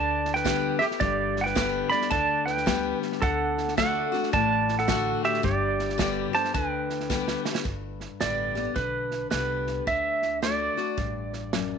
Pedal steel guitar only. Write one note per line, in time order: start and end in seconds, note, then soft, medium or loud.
0.00 0.32 D5 medium
0.00 0.31 A5 medium
0.34 0.78 B4 medium
0.34 0.77 G5 medium
0.79 0.87 G4 medium
0.79 0.85 E5 medium
1.00 1.39 G4 medium
1.00 1.42 D5 loud
1.41 1.46 F#5 medium
1.41 1.87 G5 medium
1.46 1.88 B4 medium
1.90 2.10 D5 medium
1.90 2.11 B5 medium
2.10 2.44 D5 medium
2.10 2.44 A5 loud
2.46 2.98 B4 medium
2.46 2.98 G5 medium
3.22 3.73 A4 medium
3.22 3.74 F#5 loud
3.78 4.30 A4 medium
3.78 4.29 F#5 medium
4.33 4.75 D5 medium
4.33 4.80 A5 loud
4.79 5.21 A4 medium
4.79 5.24 F#5 medium
5.25 5.43 G4 medium
5.25 5.43 E5 medium
5.44 6.30 G4 medium
5.44 6.30 D5 medium
6.35 6.53 C5 medium
6.35 6.53 A5 medium
6.54 7.41 B4 medium
6.54 7.41 G5 medium
8.21 8.78 D5 medium
8.76 9.30 B4 medium
9.31 9.88 B4 medium
9.87 10.39 E5 medium
10.43 11.78 D5 medium